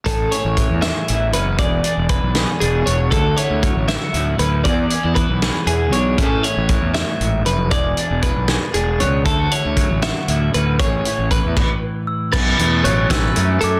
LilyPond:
<<
  \new Staff \with { instrumentName = "Glockenspiel" } { \time 6/8 \key a \major \tempo 4. = 78 r2. | r2. | r2. | r2. |
r2. | r2. | r2. | r2 r8 e'''8 |
a'''4 fis'''8 e'''4 d'''8 | }
  \new Staff \with { instrumentName = "Clean electric guitar" } { \time 6/8 \key a \major a'8 cis''4 e''4 b'8 | d''4 b'4 gis'8 cis''8 | a'8 cis''4 e''4 b'8 | d''4 b'4 gis'8 cis''8 |
a'8 cis''4 e''4 b'8 | d''4 b'4 gis'8 cis''8 | a'8 cis''4 e''4 b'8 | cis''4 b'4 r4 |
b'4 cis''8 b'4 a'8 | }
  \new Staff \with { instrumentName = "Clean electric guitar" } { \time 6/8 \key a \major << { gis'8 e'4 gis'8 e'8 cis'8 | gis'8 d'4 gis'8 d'8 b8 | fis'8 e'4 e'16 fis'16 e'8 cis'8 | gis'8 cis'16 e'8. gis'8 e'8 d'8 |
<e cis' e' gis'>8 e'2~ e'8 | gis'8 d'4 gis'8 d'8 b8 | e'16 fis'16 e'4 fis'8 e'8 cis'8 | gis'8 e'4 r4. |
cis'8 a4 cis'8 a8 cis'8 | } \\ { a,4 e4 e,4 | e,4 e4 b,4 | d4 fis4 a,4 | e,4 e4 b,4 |
a,4 e8 a,8 gis,8 fis,8 | e,4 e4 b,4 | d4 fis4 a,4 | a,4 e2 |
b,4 fis4 fis,4 | } >> }
  \new Staff \with { instrumentName = "Fingered electric bass" } { \clef bass \time 6/8 \key a \major a,,8 r16 a,,8 e,8 r16 a,,8 fis,,8 | e,,8 r16 e,,8 b,,8 r16 e,,8 e,,8 | d,8 r16 d,8 a,,8 r16 d,8 d,8 | e,8 r16 e,8 b,,8 r16 e,8 b,,8 |
a,,8 r16 a,,8 e,8 r16 a,,8 f,,8 | e,,8 r16 e,,8 b,,8 r16 e,,8 cis,8 | d,8 r16 d,8 a,,8 r16 d,8 d,8 | a,,8 r16 a,,8 e,16 r4. |
b,,8 e,8 a,,8 a,,8 fis,8 fis,8 | }
  \new DrumStaff \with { instrumentName = "Drums" } \drummode { \time 6/8 <hh bd>8 hh8 <hh bd>8 <hh sn>8 hh8 hh8 | <hh bd>8 hh8 <hh bd>8 <hh sn>8 hh8 hh8 | <hh bd>8 hh8 <hh bd>8 <hh sn>8 hh8 hh8 | <hh bd>8 hh8 <hh bd>8 <hh sn>8 hh8 hh8 |
<hh bd>8 hh8 <hh bd>8 <hh sn>8 hh8 hh8 | <hh bd>8 hh8 <hh bd>8 <hh sn>8 hh8 hh8 | <hh bd>8 hh8 <hh bd>8 <hh sn>8 hh8 hh8 | <hh bd>8 hh8 <hh bd>8 <cymc bd>4. |
<cymc bd>8 hh8 hh8 <hh bd sn>8 hh8 hh8 | }
>>